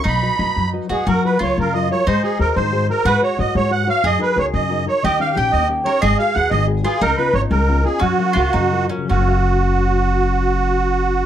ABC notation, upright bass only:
X:1
M:6/8
L:1/16
Q:3/8=120
K:B
V:1 name="Upright bass" clef=bass
B,,,4 F,, z F,,4 F,,2 | [K:F#] F,,2 z2 C,,2 F,,6 | G,,2 z2 D,,2 G,,6 | G,,2 z2 G,,2 G,,6 |
F,,2 z2 C,,2 F,,6 | D,,2 z2 A,,,2 D,,6 | G,,,2 z2 D,,2 G,,,6 | C,,2 z2 G,,,2 C,,6 |
F,,2 z2 C,,2 F,,6 | F,,,12- | F,,,12 |]